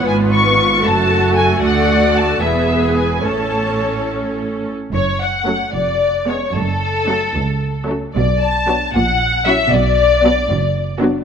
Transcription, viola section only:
\new Staff \with { instrumentName = "Viola section" } { \time 6/8 \key a \major \tempo 4. = 75 << { eis'4. fis'4. | fis'4. gis'4. | a'2~ a'8 r8 | \key fis \minor r4 a8 r4 b8 |
r4 a8 r4 a8 | r4 b8 r4 cis'8 | r4 b8 r4 b8 | } \\ { b4. a4.~ | a4. b4. | cis'2~ cis'8 r8 | r4 fis8 r4 gis8 |
r4 fis8 r4 fis8 | r4 fis8 r4 fis8 | r4 fis8 r4 fis8 | } >> }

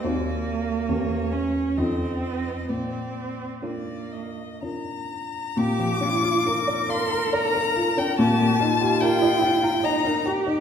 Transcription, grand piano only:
\new Staff \with { instrumentName = "Grand piano" } { \time 3/4 \key bes \major \tempo 4 = 69 <ees, c' ges' c''>4 <e, cis' g' bes'>4 <f, ees' f' a'>4 | bes,4 <d' f' bes'>4 <d' f' bes'>4 | bes,16 f16 d'16 f'16 bes'16 d''16 f''16 bes''16 d''16 bes'16 f'16 d'16 | bes,16 bes16 ees'16 g'16 bes'16 ees''16 g''16 bes''16 ees''16 bes'16 g'16 ees'16 | }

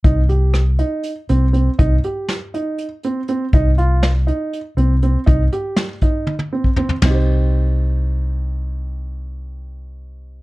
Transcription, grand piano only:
\new Staff \with { instrumentName = "Grand piano" } { \time 7/8 \key c \minor \tempo 4 = 121 ees'8 g'4 ees'4 c'8 c'8 | ees'8 g'4 ees'4 c'8 c'8 | ees'8 f'4 ees'4 c'8 c'8 | ees'8 g'4 ees'4 c'8 c'8 |
<c' ees' g' c''>2.~ <c' ees' g' c''>8~ | <c' ees' g' c''>2.~ <c' ees' g' c''>8 | }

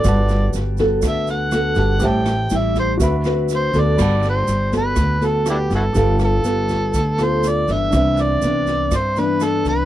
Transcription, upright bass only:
\new Staff \with { instrumentName = "Upright bass" } { \clef bass \time 4/4 \key g \major \tempo 4 = 122 g,,4 g,,4 d,4. g,,8 | a,,4 a,,4 d,4. d,8 | g,,4 g,,4 d,4. g,,8 | g,,4 g,,4 d,4. g,,8 |
c,4 c,4 g,4. c,8 | }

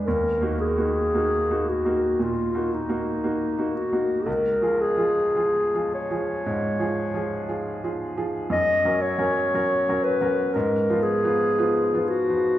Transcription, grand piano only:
\new Staff \with { instrumentName = "Grand piano" } { \time 4/4 \key ees \minor \tempo 4 = 58 \tuplet 3/2 { ees,8 <bes ees' ges'>8 <bes ees' ges'>8 <bes ees' ges'>8 <bes ees' ges'>8 <bes ees' ges'>8 bes,8 <bes ees' ges'>8 <bes ees' ges'>8 <bes ees' ges'>8 <bes ees' ges'>8 <bes ees' ges'>8 } | \tuplet 3/2 { des,8 <f f' aes'>8 <f f' aes'>8 <f f' aes'>8 <f f' aes'>8 <f f' aes'>8 aes,8 <f f' aes'>8 <f f' aes'>8 <f f' aes'>8 <f f' aes'>8 <f f' aes'>8 } | \tuplet 3/2 { ges,8 <ges des' bes'>8 <ges des' bes'>8 <ges des' bes'>8 <ges des' bes'>8 <ges des' bes'>8 aes,8 <f ces' f'>8 <f ces' f'>8 <f ces' f'>8 <f ces' f'>8 <f ces' f'>8 } | }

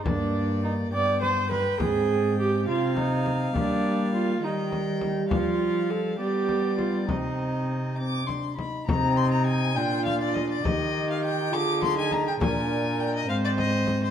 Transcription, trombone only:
\new Staff \with { instrumentName = "Trombone" } { \time 6/8 \key c \minor \tempo 4. = 68 bes4. b4 r8 | c'4. c'4. | bes4. g4.~ | g4. b4. |
c'4. c'8 d'8 ees'8 | c'4. d'4. | ees'4. f'8. ees'8. | d'4. c'4. | }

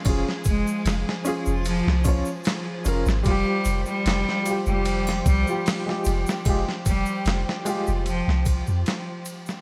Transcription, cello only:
\new Staff \with { instrumentName = "Cello" } { \clef bass \time 4/4 \key f \minor \tempo 4 = 75 r8 aes8. r8. f8. r4 r16 | g8. g4 g8. g8. r8. | r8 g8. r8. f8. r4 r16 | }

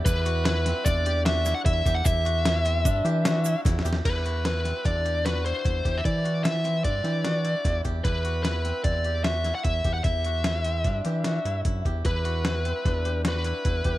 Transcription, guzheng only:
\new Staff \with { instrumentName = "Guzheng" } { \time 5/4 \key e \minor \tempo 4 = 150 e'8 fis'8 e'8 c'8 d'8 g'8 fis'8 e'8 e'8 g'8 | e'8 fis'8 e'8 c'8 d'8 g'8 fis'8 e'8 e'8 g'8 | e'8 fis'8 e'8 c'8 d'8 g'8 fis'8 e'8 e'8 g'8 | e'8 fis'8 e'8 c'8 d'8 g'8 fis'8 e'8 e'8 g'8 |
e'8 fis'8 e'8 c'8 e'8 g'8 fis'8 e'8 e'8 g'8 | e'8 fis'8 e'8 c'8 d'8 g'8 fis'8 e'8 e'8 g'8 | e'8 fis'8 e'8 c'8 d'8 g'8 fis'8 e'8 e'8 g'8 | }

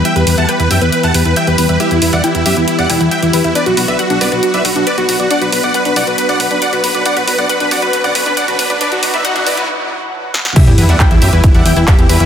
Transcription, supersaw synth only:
\new Staff \with { instrumentName = "Supersaw synth" } { \time 4/4 \key e \minor \tempo 4 = 137 <e'' g''>16 b'16 b'16 <fis'' a''>16 b'16 b'16 <e'' g''>16 b'16 b'16 <fis'' a''>16 b'16 b'16 <e'' g''>16 b'16 b'16 b'16 | <g' e''>16 e'16 e'16 <d'' fis''>16 e'16 e'16 <g' e''>16 e'16 e'16 <d'' fis''>16 e'16 e'16 <e'' g''>16 e'16 e'16 e'16 | <b' d''>16 fis'16 fis'16 <b' e''>16 fis'16 fis'16 <b' d''>16 fis'16 fis'16 <b' e''>16 fis'16 fis'16 <b' d''>16 fis'16 fis'16 fis'16 | <d'' fis''>16 b'16 b'16 <d'' fis''>16 b'16 b'16 <d'' fis''>16 b'16 b'16 <d'' fis''>16 b'16 b'16 <d'' fis''>16 b'16 b'16 b'16 |
<d'' fis''>16 b'16 b'16 <d'' fis''>16 b'16 b'16 <d'' fis''>16 b'16 b'16 <d'' fis''>16 b'16 b'16 <d'' fis''>16 b'16 b'16 b'16 | <b' d''>16 fis'16 fis'16 <b' e''>16 fis'16 fis'16 <b' d''>16 fis'16 r2 | <g' e''>16 e'16 e'16 <d'' fis''>16 e'16 e'16 <g' e''>16 e'16 e'16 <d'' fis''>16 e'16 e'16 <g' e''>16 e'16 e'16 e'16 | }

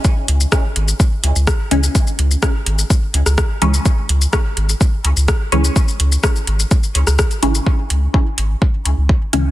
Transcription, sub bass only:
\new Staff \with { instrumentName = "Sub bass" } { \clef bass \time 4/4 \key cis \minor \tempo 4 = 126 r8 cis,16 r8. gis,,16 r8. cis,16 cis,16 r8 cis,16 r16 | r8 cis,16 r8. gis,,16 r8. cis,16 cis,16 r8 cis,16 r16 | r8 cis,16 r8. gis,,16 r8. cis,16 cis,16 r8 cis,16 r16 | r8 cis,16 r8. gis,,16 r8. cis,16 cis,16 r8 gis,,16 r16 |
r8 cis,16 r8. gis,,16 r8. cis,16 cis,16 r8 cis,16 r16 | }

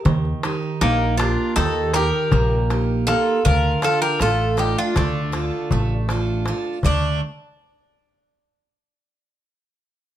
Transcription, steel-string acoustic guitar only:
\new Staff \with { instrumentName = "Steel-string acoustic guitar" } { \time 9/8 \key d \phrygian \tempo 4. = 53 ees8 <ees' g' bes'>8 bes8 g'8 ees8 <ees' g' bes'>8 bes8 <ees' g'>8 <bes ees' g'>8 | d8 <d' f' a'>8 a8 <d' f' a'>8 d8 <d' f' a'>8 a8 <d' f' a'>8 <d' f' a'>8 | <d a>8 r1 | }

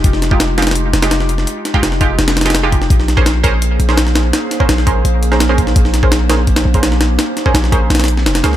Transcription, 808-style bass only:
\new Staff \with { instrumentName = "808-style bass" } { \clef bass \time 4/4 \key bes \dorian \tempo 4 = 168 f,,2~ f,,8 f,,4. | r4 f,,4 f,,2 | bes,,2~ bes,,8 bes,,4. | r4 bes,,4 bes,,2 |
bes,,2~ bes,,8 bes,,4. | r4 bes,,4 bes,,4 f,,8 des,8 | }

